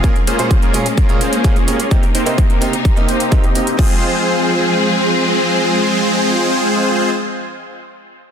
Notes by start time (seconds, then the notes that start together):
Already playing: A#3
0.03 A#2 G#3 A#3 C#4 F4 G#4 A#4, kick, closed hi-hat
0.16 closed hi-hat
0.27 A#3 C#4 F4 G#4 C5, closed hi-hat
0.38 A#2 A#3 C#4 F4 C5, closed hi-hat
0.51 kick, closed hi-hat
0.62 A#3 C#4 F4 G#4 A#4, closed hi-hat
0.73 A#2 A#3 C#4 F4 G#4, closed hi-hat
0.86 closed hi-hat
0.97 A#3 C#4 F4 G#4 A#4, kick, closed hi-hat
1.09 A#2 A#3 C#4 F4 G#4, closed hi-hat
1.21 A#3 C#4 F4 G#4 C5, closed hi-hat
1.33 closed hi-hat
1.44 A#2 A#3 C#4 F4 G#4, kick, closed hi-hat
1.56 A#3 C#4 F4 G#4 C#5, closed hi-hat
1.67 C3 A#3 C#4 F4 G#4, closed hi-hat
1.80 closed hi-hat
1.90 C3 A#3 C4 D#4 G4 A#4, kick, closed hi-hat
2.03 closed hi-hat
2.15 A#3 C4 D#4 G4 C5, closed hi-hat
2.26 C3 A#3 C4 D#4 C5, closed hi-hat
2.38 kick, closed hi-hat
2.50 A#3 C4 D#4 G4 A#4, closed hi-hat
2.61 C3 A#3 C4 D#4 G4, closed hi-hat
2.73 closed hi-hat
2.85 A#3 C4 D#4 G4 A#4, kick, closed hi-hat
2.96 C3 A#3 C4 D#4 G4, closed hi-hat
3.08 A#3 C4 D#4 G4 C5, closed hi-hat
3.20 closed hi-hat
3.31 C3 A#3 C4 D#4 G4, kick, closed hi-hat
3.44 A#3 C4 D#4 G4 D#5, closed hi-hat
3.55 A#3 C4 D#4 G4, closed hi-hat
3.67 closed hi-hat
3.77 F3 G#3 C4 F4 G#4 C5, kick, crash